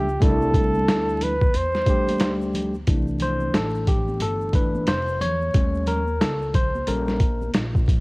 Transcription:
Already playing: upright bass C#2, flugelhorn G4
0.09 shaker
0.20 upright bass C2, tine electric piano G3 A3 D4 E4, flugelhorn A4, kick, closed hi-hat, shaker
0.42 shaker
0.54 kick, closed hi-hat, shaker
0.74 high conga, shaker
0.87 upright bass D2, snare, closed hi-hat, high conga, shaker
1.09 shaker
1.21 flugelhorn B4, closed hi-hat, low conga, shaker
1.41 kick, high conga, shaker
1.54 upright bass E2, flugelhorn C5, closed hi-hat, shaker
1.74 snare, shaker
1.86 tine electric piano G3 A3 D4 G4, kick, closed hi-hat, shaker
2.07 closed hi-hat, high conga, shaker
2.20 upright bass D2, snare, closed hi-hat, shaker
2.41 shaker
2.54 closed hi-hat, low conga, shaker
2.74 high conga, shaker
2.87 upright bass C2, tine electric piano E3 A3 D4, kick, closed hi-hat, shaker
3.07 shaker
3.20 tine electric piano C5, closed hi-hat, low conga, shaker
3.40 high conga, shaker
3.54 upright bass A1, tine electric piano A4, snare, closed hi-hat, high conga, shaker
3.75 shaker
3.87 tine electric piano G4, kick, closed hi-hat, low conga, shaker
4.08 high conga, shaker
4.20 upright bass G1, tine electric piano A4, closed hi-hat, shaker
4.41 shaker
4.53 tine electric piano E3 A3 D4 B4, kick, closed hi-hat, shaker
4.75 high conga, shaker
4.87 upright bass F1, tine electric piano C5, snare, closed hi-hat, shaker
5.08 shaker
5.21 upright bass E2, tine electric piano C#5, closed hi-hat, low conga, shaker
5.41 high conga, shaker
5.54 upright bass D#2, tine electric piano G3 A3 C#4, kick, closed hi-hat, shaker
5.74 shaker
5.87 tine electric piano A#4, closed hi-hat, low conga, shaker
6.07 high conga, shaker
6.21 upright bass C#2, tine electric piano A4, snare, closed hi-hat, high conga, shaker
6.42 shaker
6.54 tine electric piano C5, kick, closed hi-hat, low conga, shaker
6.75 high conga, shaker
6.87 upright bass A#1, tine electric piano G3 C#4 A4 A#4, closed hi-hat, shaker
7.08 snare, shaker
7.20 kick, closed hi-hat, shaker
7.42 high conga, shaker
7.54 upright bass A#1, snare, closed hi-hat, shaker
7.75 kick, shaker
7.88 kick, closed hi-hat, low conga, shaker

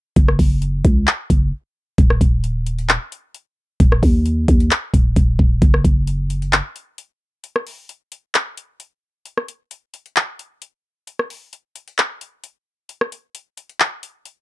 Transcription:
0.16 808-style bass F#1, kick, closed hi-hat
0.28 cross-stick
0.39 808-style bass F#1, kick, open hi-hat
0.62 closed hi-hat
0.85 808-style bass C#2, kick, closed hi-hat
1.07 clap, closed hi-hat
1.30 808-style bass F#1, kick, closed hi-hat
1.98 808-style bass D#1, kick, closed hi-hat
2.10 cross-stick
2.21 808-style bass D#1, kick, closed hi-hat
2.44 closed hi-hat
2.66 closed hi-hat
2.79 closed hi-hat
2.89 clap, closed hi-hat
3.12 closed hi-hat
3.34 closed hi-hat
3.80 808-style bass D#1, kick, closed hi-hat
3.92 cross-stick
4.03 808-style bass D#2, kick, open hi-hat
4.26 closed hi-hat
4.48 808-style bass D#2, kick, closed hi-hat
4.60 closed hi-hat
4.71 clap, closed hi-hat
4.94 808-style bass D#1, kick, closed hi-hat
5.16 808-style bass D#1, kick, closed hi-hat
5.39 808-style bass D#1, kick
5.62 808-style bass F#1, kick, closed hi-hat
5.74 cross-stick
5.85 808-style bass F#1, kick, closed hi-hat
6.07 closed hi-hat
6.30 closed hi-hat
6.42 closed hi-hat
6.53 clap, closed hi-hat
6.76 closed hi-hat
6.98 closed hi-hat
7.44 closed hi-hat
7.56 cross-stick
7.67 open hi-hat
7.89 closed hi-hat
8.12 closed hi-hat
8.35 clap, closed hi-hat
8.57 closed hi-hat
8.80 closed hi-hat
9.25 closed hi-hat
9.38 cross-stick
9.48 closed hi-hat
9.71 closed hi-hat
9.94 closed hi-hat
10.06 closed hi-hat
10.16 clap, closed hi-hat
10.39 closed hi-hat
10.62 closed hi-hat
11.07 closed hi-hat
11.19 cross-stick
11.30 open hi-hat
11.53 closed hi-hat
11.76 closed hi-hat
11.88 closed hi-hat
11.98 clap, closed hi-hat
12.21 closed hi-hat
12.44 closed hi-hat
12.89 closed hi-hat
13.01 cross-stick
13.12 closed hi-hat
13.35 closed hi-hat
13.57 closed hi-hat
13.69 closed hi-hat
13.80 clap, closed hi-hat
14.03 closed hi-hat
14.25 closed hi-hat

